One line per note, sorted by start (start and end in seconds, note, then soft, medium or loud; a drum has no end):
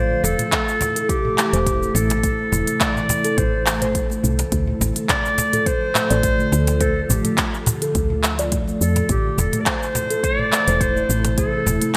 0.00 0.15 A1 medium
0.00 4.48 C3 medium
0.00 4.48 E3 medium
0.00 11.97 A3 medium
0.00 4.49 E4 medium
0.00 9.06 A4 medium
0.00 0.25 C5 medium
0.24 0.34 E1 medium
0.24 1.10 A4 loud
0.24 cajon bass medium
0.24 cajon slap medium
0.24 shaker medium
0.39 0.51 A3 medium
0.39 closed hi-hat soft
0.39 mid tom medium
0.39 shaker soft
0.52 0.95 A3 medium
0.52 kick loud
0.52 clap medium
0.52 closed hi-hat medium
0.52 shaker soft
0.68 shaker soft
0.81 cajon bass medium
0.81 cajon slap medium
0.81 closed hi-hat soft
0.81 mid tom medium
0.81 shaker medium
0.96 1.09 A4 medium
0.96 closed hi-hat soft
0.96 shaker soft
1.09 1.96 G4 medium
1.09 kick loud
1.09 closed hi-hat medium
1.09 shaker soft
1.25 mid tom medium
1.38 1.53 A3 medium
1.38 clap medium
1.38 closed hi-hat soft
1.38 shaker medium
1.53 1.88 E1 medium
1.53 1.80 C5 medium
1.53 closed hi-hat soft
1.53 shaker soft
1.66 kick medium
1.66 closed hi-hat medium
1.66 mid tom medium
1.66 shaker soft
1.82 2.22 A3 medium
1.82 shaker soft
1.94 2.45 A1 loud
1.94 2.82 A4 medium
1.94 cajon slap medium
1.94 shaker medium
2.10 cajon slap medium
2.10 closed hi-hat soft
2.10 mid tom medium
2.10 shaker soft
2.23 2.33 A3 medium
2.23 kick loud
2.23 closed hi-hat medium
2.23 shaker soft
2.52 2.63 E1 medium
2.52 cajon bass medium
2.52 mid tom medium
2.52 shaker medium
2.67 2.80 A3 medium
2.67 closed hi-hat soft
2.67 shaker soft
2.80 3.23 A3 medium
2.80 3.39 D5 medium
2.80 kick loud
2.80 clap medium
2.80 closed hi-hat medium
2.80 shaker soft
2.96 mid tom medium
2.96 shaker soft
3.09 cajon bass loud
3.09 cajon slap medium
3.09 closed hi-hat soft
3.09 shaker medium
3.25 3.37 A4 medium
3.25 closed hi-hat soft
3.25 shaker soft
3.38 4.17 A1 medium
3.38 3.95 C5 medium
3.38 kick loud
3.38 closed hi-hat medium
3.38 mid tom medium
3.38 shaker soft
3.66 3.81 A3 medium
3.66 clap medium
3.66 closed hi-hat soft
3.66 shaker medium
3.82 4.09 C5 loud
3.82 closed hi-hat soft
3.82 mid tom medium
3.82 shaker soft
3.95 kick loud
3.95 closed hi-hat medium
3.95 shaker soft
4.10 4.51 A3 medium
4.10 cajon slap soft
4.10 shaker soft
4.24 4.44 C2 medium
4.24 mid tom medium
4.24 shaker medium
4.39 cajon slap medium
4.39 closed hi-hat soft
4.39 shaker soft
4.52 4.72 D2 loud
4.52 9.06 D3 medium
4.52 9.06 F3 medium
4.52 4.61 A3 medium
4.52 9.06 F4 medium
4.52 kick loud
4.52 closed hi-hat medium
4.52 shaker soft
4.67 mid tom medium
4.81 4.91 A1 medium
4.81 cajon bass medium
4.81 cajon slap medium
4.81 shaker medium
4.96 5.08 A3 medium
4.96 closed hi-hat soft
4.96 shaker soft
5.09 5.68 D5 loud
5.09 kick loud
5.09 clap medium
5.09 closed hi-hat medium
5.09 mid tom medium
5.09 shaker soft
5.26 shaker soft
5.38 cajon bass medium
5.38 cajon slap medium
5.38 closed hi-hat soft
5.38 shaker medium
5.53 5.66 A4 medium
5.53 closed hi-hat soft
5.53 mid tom medium
5.53 shaker soft
5.66 6.82 C5 loud
5.66 kick loud
5.66 closed hi-hat medium
5.66 shaker soft
5.95 6.10 A3 medium
5.95 clap medium
5.95 closed hi-hat soft
5.95 mid tom medium
5.95 shaker medium
6.10 6.46 A1 loud
6.10 6.38 D5 loud
6.10 closed hi-hat soft
6.10 shaker soft
6.23 kick loud
6.23 closed hi-hat medium
6.23 shaker soft
6.39 6.80 A3 medium
6.39 mid tom medium
6.39 shaker soft
6.52 7.03 D2 loud
6.52 cajon slap medium
6.52 shaker medium
6.67 cajon slap medium
6.67 closed hi-hat soft
6.67 shaker soft
6.81 6.90 A3 medium
6.81 7.03 A4 medium
6.81 kick loud
6.81 closed hi-hat soft
6.81 mid tom medium
6.81 shaker soft
7.04 7.11 A4 medium
7.10 7.20 A1 medium
7.10 7.67 G4 medium
7.10 cajon bass medium
7.10 shaker medium
7.25 7.37 A3 medium
7.25 closed hi-hat soft
7.25 mid tom medium
7.25 shaker soft
7.38 kick loud
7.38 clap medium
7.38 closed hi-hat medium
7.38 shaker soft
7.54 shaker soft
7.66 cajon bass loud
7.66 cajon slap medium
7.66 closed hi-hat soft
7.66 mid tom medium
7.66 shaker medium
7.82 7.95 A4 medium
7.82 closed hi-hat soft
7.82 shaker soft
7.95 8.74 D2 medium
7.95 kick loud
7.95 closed hi-hat soft
7.95 shaker soft
8.10 mid tom medium
8.23 8.38 A3 medium
8.23 clap medium
8.23 closed hi-hat soft
8.23 shaker medium
8.39 8.66 D5 loud
8.39 closed hi-hat soft
8.39 shaker soft
8.52 kick medium
8.52 closed hi-hat medium
8.52 mid tom medium
8.52 shaker soft
8.68 9.08 A3 medium
8.68 cajon slap soft
8.68 shaker soft
8.81 9.01 F2 medium
8.81 9.08 A4 medium
8.81 shaker medium
8.96 cajon slap medium
8.96 closed hi-hat soft
8.96 mid tom medium
8.96 shaker soft
9.09 9.30 A1 loud
9.09 11.97 C3 medium
9.09 11.97 E3 medium
9.09 9.18 A3 medium
9.09 11.97 E4 medium
9.09 9.41 G4 medium
9.09 11.97 A4 medium
9.09 kick loud
9.09 closed hi-hat soft
9.09 mid tom medium
9.09 shaker soft
9.38 9.48 E1 medium
9.38 9.62 A4 medium
9.38 cajon bass medium
9.38 cajon slap medium
9.38 shaker medium
9.53 9.65 A3 medium
9.53 closed hi-hat soft
9.53 mid tom medium
9.53 shaker soft
9.61 9.69 D5 medium
9.66 10.26 C5 loud
9.66 kick loud
9.66 clap medium
9.66 closed hi-hat soft
9.66 shaker soft
9.83 shaker soft
9.95 cajon bass medium
9.95 cajon slap medium
9.95 closed hi-hat soft
9.95 mid tom medium
9.95 shaker medium
10.10 10.23 A4 medium
10.10 closed hi-hat soft
10.10 shaker soft
10.23 10.83 D5 loud
10.23 kick loud
10.23 closed hi-hat medium
10.23 shaker soft
10.39 mid tom medium
10.52 10.67 A3 medium
10.52 clap medium
10.52 closed hi-hat soft
10.52 shaker medium
10.68 11.03 E1 medium
10.68 10.95 C5 loud
10.68 closed hi-hat soft
10.68 shaker soft
10.81 11.38 C5 loud
10.81 kick loud
10.81 closed hi-hat soft
10.81 mid tom medium
10.81 shaker soft
10.96 11.37 A3 medium
10.96 shaker soft
11.09 11.60 A1 loud
11.09 cajon slap medium
11.09 shaker medium
11.25 cajon slap medium
11.25 closed hi-hat soft
11.25 mid tom medium
11.25 shaker soft
11.38 11.47 A3 medium
11.38 11.97 A4 loud
11.38 kick medium
11.38 closed hi-hat medium
11.38 shaker soft
11.66 11.77 E1 medium
11.66 cajon bass medium
11.66 mid tom medium
11.66 shaker medium
11.82 11.94 A3 medium
11.82 closed hi-hat soft
11.82 shaker soft